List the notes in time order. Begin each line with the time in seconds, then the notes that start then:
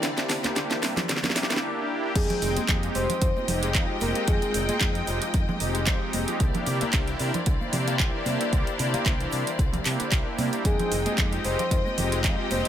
Already playing: C4 E4 D5
0.03 C2 D3 A#3 D4 E4 G4 C5, snare, closed hi-hat
0.18 A#3, snare, closed hi-hat
0.29 C3 D3, snare, open hi-hat
0.44 A#3 D4 E4 G4, muted fingered electric bass stroke, snare, closed hi-hat, high conga
0.56 C2 D3, snare, closed hi-hat
0.71 E3, snare, closed hi-hat
0.82 C3 G3 A#3 D4 E4 G4, snare, open hi-hat
0.97 E3, snare, closed hi-hat, low conga
1.09 C2 D3, snare, closed hi-hat
1.16 snare
1.23 A#3 D4 E4 G4, snare, closed hi-hat, high conga, low conga
1.30 snare
1.36 C3 G3, snare, open hi-hat
1.43 snare
1.50 D3, snare, closed hi-hat
1.56 snare
1.62 A#3 D4 E4 G4
2.15 F2 D#3 G#3 C4 D#4 F4 G#4 D#5 G5, kick, closed hi-hat, crash, shaker
2.30 G#3, closed hi-hat, low conga, shaker
2.42 F1 D#3, open hi-hat, shaker
2.56 G#3 C4 D#4 G4, muted fingered electric bass stroke, closed hi-hat, high conga, shaker
2.69 F2 D#3, kick, clap, closed hi-hat, shaker
2.83 F3, closed hi-hat
2.95 F1 G3 G#3 C4 D#4 G4 C5, open hi-hat, shaker
3.09 F3, closed hi-hat, low conga, shaker
3.22 F2 D#3, kick, closed hi-hat, shaker
3.36 G#3 C4 D#4 G4, high conga, shaker
3.48 F1 D#3, open hi-hat, low conga, shaker
3.63 G#3, closed hi-hat, shaker
3.74 F2 D#3 G#3 C4 D#4 G4, kick, clap, closed hi-hat, shaker
3.90 F3
4.01 F1 G3 G#3 C4 D#4 G4 A#4, open hi-hat, high conga, shaker
4.15 F3, closed hi-hat, shaker
4.27 F2 D#3 G#3 C4 D#4 G#4 G5, kick, closed hi-hat, shaker
4.42 G#3, closed hi-hat, shaker
4.54 F1 D#3, open hi-hat, shaker
4.69 G#3 C4 D#4 G5, muted fingered electric bass stroke, closed hi-hat, high conga, shaker
4.81 F2 D#3, kick, clap, closed hi-hat, shaker
4.95 F3, closed hi-hat
5.07 F1 G3 G#3 C4 D#4 G4, open hi-hat, shaker
5.22 F3, closed hi-hat, shaker
5.33 F2 D#3, kick, closed hi-hat, shaker
5.48 G#3 C4 D#4 G4, high conga, low conga, shaker
5.60 F1 D#3, open hi-hat, shaker
5.75 G#3, closed hi-hat, shaker
5.87 F2 D#3 G#3 C4 D#4 G4, kick, clap, closed hi-hat, shaker
6.02 F3
6.13 F1 G3 G#3 C4 D#4 G4, open hi-hat, high conga, shaker
6.28 F3, closed hi-hat, shaker
6.40 C2 D3 A#3 D4 E4 G4 C5 D5, kick, closed hi-hat, shaker
6.54 A#3, closed hi-hat, low conga, shaker
6.66 C3 D3, open hi-hat, shaker
6.81 A#3 D4 E4 G4, muted fingered electric bass stroke, closed hi-hat, high conga, shaker
6.93 C2 D3, kick, clap, closed hi-hat, shaker
7.08 E3, closed hi-hat
7.19 C3 G3 A#3 D4 E4 G4, open hi-hat, shaker
7.34 E3, closed hi-hat, low conga, shaker
7.46 C2 D3, kick, closed hi-hat, shaker
7.60 A#3 D4 E4 G4, high conga, shaker
7.73 C3 D3, open hi-hat, low conga, shaker
7.88 A#3, closed hi-hat, shaker
7.99 C2 D3 A#3 D4 E4 G4, kick, clap, closed hi-hat
8.14 E3
8.26 C3 G3 A#3 D4 E4 G4, open hi-hat, high conga, shaker
8.41 E3, closed hi-hat, shaker
8.52 C2 D3 A#3 D4 E4 G4, kick, closed hi-hat, shaker
8.67 A#3, closed hi-hat, shaker
8.79 C3 D3, open hi-hat, shaker
8.93 A#3 D4 E4 G4, muted fingered electric bass stroke, closed hi-hat, high conga, shaker
9.06 C2 D3, kick, clap, closed hi-hat, shaker
9.20 E3, closed hi-hat
9.32 C3 G3 A#3 D4 E4 G4, open hi-hat, shaker
9.47 E3, closed hi-hat, shaker
9.59 C2 D3, kick, closed hi-hat, shaker
9.73 A#3 D4 E4 G4, closed hi-hat, high conga, low conga, shaker
9.85 C3 G3, clap, open hi-hat, shaker
10.00 D3, muted fingered electric bass stroke, closed hi-hat, shaker
10.12 C2 A#3 D4 E4 G4, kick, clap, closed hi-hat, shaker
10.27 A#3
10.38 C3 G3 A#3 D4 E4 G4, open hi-hat, high conga, shaker
10.53 A#3, closed hi-hat, shaker
10.65 F2 D#3 G#3 C4 D#4 F4 G#4 D#5 G5, kick, closed hi-hat, shaker
10.79 G#3, closed hi-hat, low conga, shaker
10.92 F1 D#3, open hi-hat, shaker
11.05 G#3 C4 D#4 G4, muted fingered electric bass stroke, closed hi-hat, high conga, shaker
11.18 F2 D#3, kick, clap, closed hi-hat, shaker
11.33 F3, closed hi-hat
11.44 F1 G3 G#3 C4 D#4 G4 C5, open hi-hat, shaker
11.59 F3, closed hi-hat, low conga, shaker
11.71 F2 D#3, kick, closed hi-hat, shaker
11.85 G#3 C4 D#4 G4, high conga, shaker
11.98 F1 D#3, open hi-hat, low conga, shaker
12.12 G#3, closed hi-hat, shaker
12.24 F2 D#3 G#3 C4 D#4 G4, kick, clap, closed hi-hat, shaker
12.39 F3
12.50 F1 G3 G#3 C4 D#4 G4 C5, open hi-hat, high conga, shaker
12.65 closed hi-hat